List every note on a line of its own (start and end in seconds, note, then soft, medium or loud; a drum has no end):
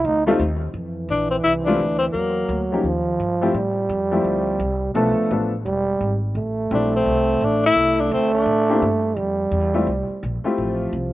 0.04 0.39 D2 medium
0.04 0.27 D#4 loud
0.26 0.38 G3 medium
0.26 0.39 A3 medium
0.26 0.35 A3 medium
0.26 0.39 C4 medium
0.26 0.39 D#4 medium
0.26 0.39 F4 loud
0.39 0.73 D#2 loud
0.74 1.08 F2 medium
0.74 2.17 E3 medium
1.09 1.43 A#1 medium
1.09 1.30 D4 medium
1.31 1.37 C4 medium
1.44 1.78 C2 medium
1.44 1.54 E4 loud
1.65 1.78 G3 medium
1.65 1.78 A3 medium
1.65 1.79 C4 medium
1.65 1.98 D4 medium
1.65 1.79 E4 medium
1.65 1.79 F4 medium
1.79 2.13 D2 medium
1.99 2.05 C4 medium
2.12 2.48 E2 medium
2.12 2.87 F#3 medium
2.12 2.67 A#3 medium
2.49 2.83 D2 medium
2.72 2.83 F3 medium
2.72 2.83 A#3 medium
2.72 2.84 C#4 medium
2.72 2.84 D#4 medium
2.72 2.84 G4 medium
2.84 3.18 D#2 medium
2.84 3.56 F3 loud
3.20 3.54 G2 medium
3.41 3.53 F3 medium
3.41 3.54 A3 medium
3.41 3.54 C4 medium
3.41 3.54 E4 medium
3.41 3.54 G4 medium
3.54 3.89 A2 medium
3.54 4.94 G3 medium
3.89 4.24 F2 medium
4.11 4.57 F3 medium
4.11 4.57 A3 medium
4.11 4.58 C4 medium
4.11 4.58 E4 medium
4.11 4.58 G4 medium
4.24 4.59 D2 medium
4.59 4.94 C2 medium
4.95 5.16 B1 medium
4.95 5.29 F3 medium
4.95 5.37 A3 medium
4.95 5.29 A3 medium
4.95 5.29 B3 medium
4.95 5.29 D4 medium
4.95 5.29 A4 medium
5.18 muted upright bass stroke soft
5.31 5.65 A1 medium
5.31 5.50 F3 medium
5.31 5.51 A3 medium
5.31 5.51 B3 soft
5.31 5.51 D4 soft
5.31 5.51 A4 medium
5.65 6.00 E1 medium
5.65 6.18 G3 medium
6.01 6.34 G#1 medium
6.35 6.69 A1 medium
6.35 7.73 A3 medium
6.71 7.05 A#1 loud
6.71 6.91 G3 medium
6.71 6.91 A3 soft
6.71 6.91 C4 medium
6.71 6.93 D4 medium
6.71 6.91 E4 soft
6.71 6.91 G4 medium
6.96 7.46 C4 medium
7.06 7.40 C2 medium
7.41 7.75 A1 medium
7.41 7.65 D4 loud
7.66 8.02 E4 loud
7.75 8.10 C2 medium
7.75 9.18 A3 loud
8.00 8.12 D4 medium
8.11 8.45 D2 loud
8.11 8.33 C4 medium
8.34 9.00 D4 medium
8.46 8.80 A2 medium
8.69 8.81 A#3 medium
8.69 8.81 C4 medium
8.69 8.81 D4 medium
8.69 8.81 E4 medium
8.69 8.81 G4 medium
8.82 9.16 G2 medium
9.16 9.51 F2 medium
9.16 10.32 G3 medium
9.51 9.86 E2 medium
9.74 9.86 A3 medium
9.74 9.86 C4 medium
9.74 9.86 E4 medium
9.74 9.86 F4 medium
9.74 9.87 G4 medium
9.87 10.08 C2 medium
10.09 muted upright bass stroke soft
10.23 10.43 A#1 medium
10.44 10.90 A3 medium
10.44 10.90 C4 medium
10.44 10.90 E4 medium
10.44 10.91 F4 medium
10.44 10.91 G4 medium
10.44 muted upright bass stroke soft
10.58 10.92 A1 medium
10.58 11.13 F3 medium
10.93 11.13 C2 medium